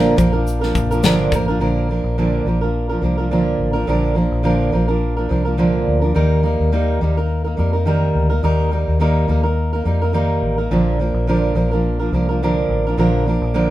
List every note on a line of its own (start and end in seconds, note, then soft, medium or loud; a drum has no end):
0.00 0.14 A#1 loud
0.00 0.17 A#2 medium
0.00 0.18 D3 medium
0.00 0.15 F3 medium
0.00 0.17 A#3 medium
0.00 0.18 D4 loud
0.00 0.18 A#4 loud
0.16 0.71 A#1 medium
0.16 0.33 F3 medium
0.16 0.33 A#3 medium
0.16 0.32 D4 medium
0.16 0.31 A#4 medium
0.16 kick medium
0.16 shaker medium
0.33 0.63 F3 soft
0.33 0.62 A#3 soft
0.33 0.61 D4 medium
0.33 0.60 A#4 medium
0.47 shaker medium
0.61 0.91 F3 soft
0.61 0.91 A#3 medium
0.61 0.90 D4 medium
0.61 0.89 A#4 medium
0.61 snare soft
0.75 1.01 A#1 loud
0.75 kick medium
0.75 shaker medium
0.91 1.03 F3 medium
0.91 1.04 A#3 medium
0.91 1.04 D4 medium
0.91 1.03 A#4 medium
0.91 shaker soft
1.03 1.32 G1 loud
1.03 1.32 A#2 medium
1.03 1.32 D3 medium
1.03 1.31 F3 medium
1.03 1.32 A#3 medium
1.03 1.32 D4 medium
1.03 1.33 A#4 medium
1.03 snare loud
1.03 shaker medium
1.32 1.58 A1 medium
1.32 1.48 F3 medium
1.32 1.48 A#3 medium
1.32 1.48 D4 medium
1.32 1.47 A#4 medium
1.32 kick medium
1.32 shaker medium
1.48 1.60 F3 soft
1.48 1.60 A#3 medium
1.48 1.60 D4 medium
1.48 1.60 A#4 medium
1.60 2.00 A#1 medium
1.60 1.88 A#2 medium
1.60 1.89 D3 medium
1.60 1.88 F3 medium
1.60 1.89 A#3 medium
1.60 1.89 D4 medium
1.60 1.89 A#4 medium
1.89 2.17 F3 soft
1.89 2.17 A#3 medium
1.89 2.18 D4 medium
1.89 2.18 A#4 medium
2.04 2.42 A#1 medium
2.18 2.46 A#2 medium
2.18 2.46 D3 medium
2.18 2.45 F3 medium
2.18 2.46 A#3 medium
2.18 2.46 D4 medium
2.18 2.47 A#4 medium
2.45 2.98 A#1 medium
2.45 2.61 F3 medium
2.45 2.62 A#3 medium
2.45 2.61 D4 medium
2.49 2.60 A#4 medium
2.61 2.91 F3 soft
2.61 2.90 A#3 soft
2.61 2.89 D4 soft
2.61 2.88 A#4 medium
2.89 3.01 F3 soft
2.89 3.02 A#3 soft
2.89 3.03 D4 soft
2.89 3.02 A#4 soft
3.02 3.55 C2 medium
3.02 3.18 F3 medium
3.02 3.18 A#3 medium
3.02 3.17 D4 medium
3.02 3.16 A#4 medium
3.17 3.30 F3 soft
3.17 3.31 A#3 soft
3.17 3.31 D4 soft
3.17 3.30 A#4 soft
3.31 3.75 A#2 medium
3.31 3.75 D3 medium
3.31 3.74 F3 medium
3.31 3.74 A#3 medium
3.31 3.73 D4 medium
3.31 3.72 A#4 medium
3.60 3.86 A1 medium
3.73 3.87 F3 soft
3.73 3.87 A#3 soft
3.73 3.87 D4 soft
3.73 3.87 A#4 medium
3.87 4.28 A#1 medium
3.87 4.16 A#2 medium
3.87 4.16 D3 medium
3.87 4.14 F3 medium
3.87 4.15 A#3 medium
3.87 4.16 D4 medium
3.87 4.17 A#4 medium
4.15 4.43 F3 medium
4.15 4.44 A#3 medium
4.15 4.44 D4 medium
4.15 4.44 A#4 medium
4.32 4.70 A#1 medium
4.43 4.72 A#2 medium
4.43 4.73 D3 medium
4.43 4.71 F3 medium
4.43 4.72 A#3 medium
4.43 4.72 D4 medium
4.43 4.73 A#4 medium
4.72 5.26 A#1 medium
4.72 4.88 F3 medium
4.72 4.89 A#3 medium
4.72 4.87 D4 medium
4.72 4.86 A#4 medium
4.88 5.18 F3 soft
4.88 5.17 A#3 soft
4.88 5.16 D4 medium
4.88 5.15 A#4 medium
5.16 5.28 F3 soft
5.16 5.29 A#3 soft
5.16 5.30 D4 soft
5.16 5.30 A#4 soft
5.29 5.83 C2 medium
5.29 5.45 F3 medium
5.29 5.45 A#3 medium
5.29 5.44 D4 medium
5.29 5.43 A#4 medium
5.45 5.57 F3 soft
5.45 5.58 A#3 soft
5.45 5.58 D4 soft
5.45 5.58 A#4 soft
5.58 6.02 A#2 medium
5.58 6.03 D3 medium
5.58 6.03 F3 medium
5.58 6.02 A#3 medium
5.58 6.01 D4 medium
5.58 6.00 A#4 medium
5.88 6.14 D2 medium
6.01 6.15 F3 soft
6.01 6.14 A#3 soft
6.01 6.15 D4 soft
6.01 6.15 A#4 soft
6.14 6.56 D#2 medium
6.14 6.43 D#3 medium
6.14 6.42 G3 medium
6.14 6.42 A#3 medium
6.14 6.44 D#4 medium
6.14 6.44 A#4 medium
6.43 6.71 G3 soft
6.43 6.72 A#3 medium
6.43 6.72 D#4 medium
6.43 6.73 A#4 medium
6.60 6.98 D#2 medium
6.72 7.01 D#3 medium
6.72 7.00 G3 medium
6.72 7.01 A#3 medium
6.72 7.02 D#4 medium
6.72 7.02 A#4 medium
7.01 7.54 D#2 medium
7.01 7.17 G3 medium
7.01 7.17 A#3 medium
7.01 7.17 D#4 medium
7.01 7.16 A#4 medium
7.17 7.46 A#3 soft
7.17 7.45 D#4 soft
7.17 7.43 A#4 medium
7.44 7.56 A#3 soft
7.44 7.57 D#4 soft
7.44 7.57 A#4 soft
7.57 8.11 F2 medium
7.57 7.73 G3 soft
7.57 7.73 A#3 medium
7.57 7.73 D#4 medium
7.57 7.72 A#4 medium
7.73 7.86 A#3 soft
7.73 7.86 D#4 soft
7.73 7.86 A#4 soft
7.86 8.30 D#3 medium
7.86 8.30 G3 medium
7.86 8.31 A#3 medium
7.86 8.30 D#4 medium
7.86 8.28 A#4 medium
8.15 8.41 D2 medium
8.30 8.42 A#3 soft
8.30 8.43 D#4 soft
8.30 8.43 A#4 medium
8.43 8.84 D#2 medium
8.43 8.71 D#3 medium
8.43 8.70 G3 medium
8.43 8.72 A#3 medium
8.43 8.72 D#4 medium
8.43 8.72 A#4 medium
8.71 8.99 G3 medium
8.71 9.00 A#3 medium
8.71 9.00 D#4 medium
8.71 9.00 A#4 medium
8.88 9.26 D#2 medium
9.00 9.28 D#3 medium
9.00 9.27 G3 medium
9.00 9.28 A#3 medium
9.00 9.28 D#4 medium
9.00 9.29 A#4 medium
9.28 9.81 D#2 medium
9.28 9.44 G3 soft
9.28 9.44 A#3 medium
9.28 9.43 D#4 medium
9.28 9.42 A#4 medium
9.43 9.73 A#3 soft
9.43 9.73 D#4 soft
9.43 9.72 A#4 soft
9.73 9.85 A#3 soft
9.73 9.86 D#4 soft
9.73 9.85 A#4 soft
9.85 10.38 F2 medium
9.85 10.01 G3 medium
9.85 10.01 A#3 medium
9.85 10.02 D#4 medium
9.85 10.00 A#4 medium
10.01 10.13 A#3 soft
10.01 10.13 D#4 soft
10.01 10.14 A#4 soft
10.13 10.57 D#3 medium
10.13 10.58 G3 medium
10.13 10.58 A#3 medium
10.13 10.58 D#4 medium
10.13 10.56 A#4 medium
10.42 10.68 A1 medium
10.58 10.71 A#3 soft
10.58 10.71 D#4 soft
10.58 10.70 A#4 soft
10.71 11.11 A#1 medium
10.71 10.99 A#2 medium
10.71 10.99 D3 medium
10.71 10.98 F3 medium
10.71 11.00 A#3 medium
10.71 11.00 D4 medium
10.71 11.00 A#4 medium
10.99 11.27 F3 medium
10.99 11.28 A#3 medium
10.99 11.28 D4 medium
10.99 11.29 A#4 medium
11.14 11.52 A#1 medium
11.27 11.56 A#2 medium
11.27 11.56 D3 medium
11.27 11.54 F3 medium
11.27 11.55 A#3 medium
11.27 11.56 D4 medium
11.27 11.57 A#4 medium
11.55 12.08 A#1 medium
11.55 11.71 F3 medium
11.55 11.72 A#3 medium
11.55 11.72 D4 medium
11.55 11.70 A#4 medium
11.71 12.01 F3 soft
11.71 12.00 A#3 soft
11.71 11.99 D4 soft
11.71 11.98 A#4 soft
11.99 12.12 F3 soft
11.99 12.13 A#3 soft
11.99 12.13 D4 soft
11.99 12.12 A#4 medium
12.12 12.65 C2 medium
12.12 12.28 F3 medium
12.12 12.29 A#3 medium
12.12 12.29 D4 medium
12.12 12.27 A#4 medium
12.29 12.42 F3 soft
12.29 12.42 A#3 soft
12.29 12.42 D4 soft
12.29 12.41 A#4 soft
12.42 12.86 A#2 medium
12.42 12.86 D3 medium
12.42 12.86 F3 medium
12.42 12.86 A#3 medium
12.42 12.86 D4 medium
12.42 12.85 A#4 medium
12.69 12.95 A1 medium
12.87 12.97 F3 soft
12.87 12.98 A#3 soft
12.87 12.98 D4 soft
12.87 12.98 A#4 soft
12.97 13.38 A#1 medium
12.97 13.26 A#2 medium
12.97 13.26 D3 medium
12.97 13.25 F3 medium
12.97 13.27 A#3 medium
12.97 13.27 D4 medium
12.97 13.27 A#4 medium
13.26 13.54 F3 soft
13.26 13.54 A#3 medium
13.26 13.55 D4 medium
13.26 13.55 A#4 medium
13.42 13.70 A#1 medium
13.54 13.70 A#2 medium
13.54 13.70 D3 medium
13.54 13.70 F3 medium
13.54 13.70 A#3 medium
13.54 13.70 D4 medium
13.54 13.70 A#4 medium